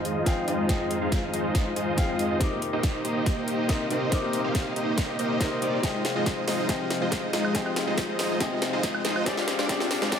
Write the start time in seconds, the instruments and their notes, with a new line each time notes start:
Already playing: analog synth pad F2 D#3 G#3, felt piano F3 C4 G#4 D#5 G5, supersaw synth G#3 D#4 F4 C5 D#5, harp D#4 F4 C5 D#5
0.05 harp G#4, closed hi-hat
0.25 felt piano F3 C4 G#4 F5 G5, harp C5, kick, snare, closed hi-hat
0.37 harp D#5
0.48 supersaw synth G#3 D#4 F4 C5 D#5, harp D#4, closed hi-hat
0.67 felt piano F3 C4 G#4 G5, harp D#4, kick, snare, closed hi-hat
0.71 felt piano D#5
0.80 harp F4
0.91 harp G#4, closed hi-hat
1.01 supersaw synth G#3 D#4 F4 C5 F5
1.12 harp C5, kick, snare, closed hi-hat
1.23 harp D#5
1.33 supersaw synth G#3 D#4 F4 C5 D#5, harp D#4, closed hi-hat
1.55 harp D#4, kick, snare, closed hi-hat
1.66 harp F4
1.76 supersaw synth G#3 D#4 F4 C5 D#5, harp G#4, closed hi-hat
1.97 felt piano F3 C4 G#4 F5 G5, harp C5, kick, snare, closed hi-hat
2.08 supersaw synth G#3 D#4 F4 C5 D#5, harp D#5
2.19 harp D#4, closed hi-hat
2.39 felt piano C3 C4 D#4 A#4 D6, analog synth pad C3 A#3 D#4, harp D#4, kick, snare, closed hi-hat
2.52 harp G4
2.62 harp A#4, closed hi-hat
2.73 supersaw synth A#3 D#4 G4 C5 D#5
2.83 kick, snare, closed hi-hat
2.95 harp D#5
3.05 supersaw synth A#3 D#4 G4 C5 D#5, harp D#4, closed hi-hat
3.26 kick, snare, closed hi-hat
3.37 harp G4
3.47 harp A#4, closed hi-hat
3.68 felt piano C3 C4 D#4 A#4 D#5, harp C5, kick, snare, closed hi-hat
3.80 harp D#5
3.90 supersaw synth A#3 D#4 G4 C5 D#5, harp D#4, closed hi-hat
4.10 felt piano C3 C4 D#4 A#4, kick, snare, closed hi-hat
4.14 felt piano D6
4.23 harp G4
4.33 harp A#4, closed hi-hat
4.44 supersaw synth A#3 D#4 G4 C5 F5
4.55 harp C5, kick, snare, closed hi-hat
4.66 harp D#5
4.76 supersaw synth A#3 D#4 G4 C5 D#5, harp D#4, closed hi-hat
4.98 harp D#4, kick, snare, closed hi-hat
5.09 harp G4
5.19 supersaw synth A#3 D#4 G4 C5 D#5, harp A#4, closed hi-hat
5.39 felt piano C3 C4 D#4 A#4 D#5, harp C5, kick, snare, closed hi-hat
5.52 harp D#5
5.62 supersaw synth A#3 D#4 G4 C5 D5, harp D#4, closed hi-hat
5.81 felt piano C3 C4 G#4 G5, analog synth pad C3 F3 G#3, supersaw synth G#3 D#4 F4 C5 D#5, kick, snare, closed hi-hat, riser
5.85 felt piano D#5
5.95 harp F4
6.05 harp G#4, snare, closed hi-hat
6.16 supersaw synth G#3 D#4 F4 C5 D#5
6.26 harp C5, kick, snare, closed hi-hat
6.38 harp D#5
6.47 supersaw synth G#3 D#4 F4 C5 D#5, harp D#4, snare, open hi-hat
6.67 felt piano C3 C4 G#4 D#5 G5, supersaw synth C5, kick, snare, closed hi-hat
6.80 harp F4
6.90 harp G#4, snare, closed hi-hat
7.01 supersaw synth G#3 D#4 F4 C5 D#5
7.12 kick, snare, closed hi-hat
7.23 harp D#5
7.33 supersaw synth G#3 D#4 F4 C5 D#5, harp D#4, snare, closed hi-hat
7.45 high woodblock
7.53 felt piano C3 C4 G#4 G5, supersaw synth G#3 D#4 F4 C5 D#5, harp D#4, kick, snare, closed hi-hat
7.57 felt piano D#5
7.66 harp F4, high woodblock
7.76 harp G#4, snare, closed hi-hat
7.87 supersaw synth G#3 D#4 F4 C5 D#5
7.98 harp C5, kick, snare, closed hi-hat
8.09 harp D#5
8.19 supersaw synth G#3 D#4 F4 C5 D#5, harp D#4, snare, open hi-hat
8.39 felt piano C3 C4 G#4 G5, supersaw synth G#3 D#4 F4 C5 D#5, harp D#4, kick, snare, closed hi-hat
8.43 felt piano D#5
8.52 harp F4
8.62 harp G#4, snare, closed hi-hat
8.73 supersaw synth G#3 D#4 F4 C5 D#5
8.83 harp C5, kick, snare, closed hi-hat
8.95 harp D#5, high woodblock
9.05 supersaw synth G#3 D#4 F4 C5 D#5, harp D#4, snare, closed hi-hat
9.16 high woodblock
9.24 analog synth pad A#2 D4, felt piano C3 C4 G4 G#4, supersaw synth G#3 D4 F4 C5 D5, harp D4, kick, snare, closed hi-hat
9.28 felt piano D5
9.37 harp F4, snare
9.48 harp G#4, snare, closed hi-hat
9.59 supersaw synth G#3 D4 F4 C5 D5, snare
9.67 felt piano C3 C4 G#4 D5 G5, supersaw synth G#3 D4 F4 C5 D5, harp D4, kick, snare, closed hi-hat
9.80 harp F4, snare
9.90 harp G#4, snare, open hi-hat
10.02 supersaw synth G#3 D4 F4 C5 D5, snare
10.10 felt piano C3 C4 G#4 G5, supersaw synth G#3 D4 F4 C5 D5, harp D4, kick, snare, closed hi-hat
10.14 felt piano D5